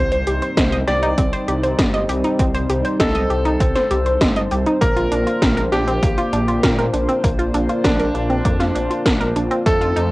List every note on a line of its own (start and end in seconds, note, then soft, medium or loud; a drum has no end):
0.00 0.23 C2 loud
0.00 4.78 G3 medium
0.00 0.10 C4 loud
0.00 4.78 C4 medium
0.00 4.78 D#4 medium
0.00 0.76 C5 medium
0.00 10.12 C5 medium
0.12 0.25 C5 medium
0.12 closed hi-hat soft
0.27 0.40 C2 medium
0.27 0.41 G4 medium
0.27 closed hi-hat medium
0.42 0.50 C5 medium
0.42 closed hi-hat soft
0.57 0.83 C2 medium
0.57 0.71 D#5 medium
0.57 kick loud
0.57 snare loud
0.57 closed hi-hat medium
0.72 0.86 D#5 loud
0.72 closed hi-hat soft
0.88 1.14 C2 medium
0.88 1.02 G4 medium
0.88 1.97 D5 medium
0.88 snare soft
0.88 closed hi-hat soft
1.03 1.17 D#4 loud
1.03 closed hi-hat soft
1.18 1.31 C2 medium
1.18 1.31 C4 loud
1.18 kick loud
1.18 closed hi-hat medium
1.33 1.47 C5 loud
1.33 closed hi-hat soft
1.48 1.75 C2 medium
1.48 1.62 G4 medium
1.48 closed hi-hat medium
1.63 1.72 C5 medium
1.63 closed hi-hat soft
1.79 2.05 G1 medium
1.79 1.93 D#5 medium
1.79 kick loud
1.79 snare loud
1.79 closed hi-hat loud
1.94 2.07 D#5 loud
1.94 closed hi-hat soft
2.09 2.22 C2 medium
2.09 2.23 G4 medium
2.09 closed hi-hat medium
2.24 2.39 D#4 medium
2.24 closed hi-hat soft
2.39 2.65 C2 medium
2.39 2.53 C4 loud
2.39 kick loud
2.39 closed hi-hat medium
2.54 2.68 C5 loud
2.54 closed hi-hat soft
2.69 2.83 C2 medium
2.69 2.83 G4 medium
2.69 closed hi-hat medium
2.85 2.93 C5 medium
2.85 closed hi-hat soft
3.00 3.26 C2 loud
3.00 4.70 A4 medium
3.00 3.14 D#5 medium
3.00 kick loud
3.00 snare loud
3.00 closed hi-hat medium
3.15 3.29 D#5 loud
3.15 closed hi-hat soft
3.30 3.56 C2 medium
3.30 3.44 G4 medium
3.30 closed hi-hat soft
3.45 3.60 D#4 loud
3.45 closed hi-hat soft
3.60 3.73 C2 medium
3.60 3.74 C4 loud
3.60 kick loud
3.60 closed hi-hat medium
3.76 3.89 C5 loud
3.76 snare soft
3.76 closed hi-hat soft
3.90 4.17 C2 medium
3.90 4.04 G4 medium
3.90 closed hi-hat medium
4.06 4.14 C5 medium
4.06 closed hi-hat soft
4.21 4.47 G1 medium
4.21 4.35 D#5 medium
4.21 kick loud
4.21 snare loud
4.21 closed hi-hat medium
4.36 4.50 D#5 loud
4.36 closed hi-hat soft
4.51 4.64 C2 medium
4.51 4.66 G4 medium
4.51 closed hi-hat medium
4.66 4.81 D#4 loud
4.66 closed hi-hat soft
4.81 5.08 A#1 medium
4.81 4.95 A#3 loud
4.81 9.62 A#3 medium
4.81 9.62 D4 medium
4.81 10.12 F4 medium
4.81 5.60 A#4 medium
4.81 kick loud
4.81 closed hi-hat medium
4.97 5.10 F4 loud
4.97 closed hi-hat soft
5.12 5.25 A#1 medium
5.12 5.25 D4 medium
5.12 closed hi-hat medium
5.27 5.35 F4 medium
5.27 closed hi-hat soft
5.42 5.68 A#1 loud
5.42 5.56 A#4 medium
5.42 kick loud
5.42 snare loud
5.42 closed hi-hat medium
5.57 5.71 A#4 loud
5.57 closed hi-hat soft
5.72 5.99 A#1 medium
5.72 5.87 D4 medium
5.72 6.81 G4 medium
5.72 snare soft
5.72 closed hi-hat soft
5.88 6.02 C4 loud
5.88 closed hi-hat soft
6.03 6.16 A#1 medium
6.03 6.16 A#3 loud
6.03 kick loud
6.03 closed hi-hat medium
6.18 6.31 F4 loud
6.18 closed hi-hat soft
6.33 6.59 A#1 medium
6.33 6.47 D4 medium
6.33 closed hi-hat medium
6.48 6.56 F4 medium
6.48 closed hi-hat soft
6.63 6.90 A#2 medium
6.63 6.77 A#4 medium
6.63 kick loud
6.63 snare loud
6.63 closed hi-hat medium
6.78 6.92 A#4 loud
6.78 closed hi-hat soft
6.93 7.07 A#1 loud
6.93 7.08 D4 medium
6.93 closed hi-hat medium
7.09 7.23 C4 loud
7.09 closed hi-hat soft
7.24 7.50 A#1 loud
7.24 7.37 A#3 loud
7.24 kick loud
7.24 closed hi-hat medium
7.39 7.53 F4 loud
7.39 closed hi-hat soft
7.54 7.67 A#1 medium
7.54 7.68 D4 medium
7.54 closed hi-hat medium
7.69 7.78 F4 medium
7.69 closed hi-hat soft
7.84 8.11 A#1 loud
7.84 9.54 D4 medium
7.84 7.98 A#4 medium
7.84 kick loud
7.84 snare loud
7.84 closed hi-hat medium
7.99 8.13 A#4 loud
7.99 closed hi-hat soft
8.15 8.41 A#1 medium
8.15 8.29 D4 medium
8.15 closed hi-hat soft
8.30 8.44 C4 loud
8.30 closed hi-hat soft
8.45 8.71 F2 medium
8.45 8.59 A#3 loud
8.45 kick loud
8.45 closed hi-hat medium
8.60 8.74 F4 loud
8.60 snare soft
8.60 closed hi-hat soft
8.75 8.89 A#1 medium
8.75 8.89 D4 medium
8.75 closed hi-hat medium
8.90 8.99 F4 medium
8.90 closed hi-hat soft
9.06 9.32 A#1 medium
9.06 9.19 A#4 medium
9.06 kick loud
9.06 snare loud
9.06 closed hi-hat medium
9.21 9.34 A#4 loud
9.21 closed hi-hat soft
9.36 9.49 A#1 medium
9.36 9.50 D4 medium
9.36 closed hi-hat medium
9.51 9.66 C4 medium
9.51 closed hi-hat soft
9.66 9.93 F2 loud
9.66 9.80 A3 loud
9.66 10.12 A3 medium
9.66 10.12 D#4 medium
9.66 10.12 A4 medium
9.66 kick loud
9.66 closed hi-hat medium
9.81 9.95 F4 loud
9.81 closed hi-hat soft
9.96 10.10 F2 medium
9.96 10.10 D#4 medium
9.96 closed hi-hat medium